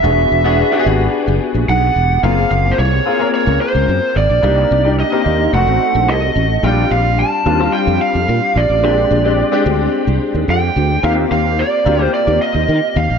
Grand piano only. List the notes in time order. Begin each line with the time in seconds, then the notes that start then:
0.02 B3 D4 F#4 G#4
0.44 B3 D4 F#4 G#4
0.72 B3 D4 F#4 G4
0.79 G#4
2.23 A#3 C4 F4 G#4
3.05 A#3 C4 F4 G#4
3.19 A#3 C4 F4 A#4
4.42 A#3 D4 D#4 G4
4.84 A#3 D4 D#4 G4
5.12 A#3 C4 D#4 G4
5.54 A3 C4 D#4 F#4
6.63 G3 C4 D4 F4
7.45 G3 C4 D4 F4
7.59 G3 C4 D4 F4
8.83 G#3 C4 D4 G4
9.24 G#3 C4 D4 G4
9.51 G#3 C4 D4 G4
11.03 A#3 C4 F4 G4
11.85 A#3 C4 F4 G4
11.99 A#3 C4 F4 G4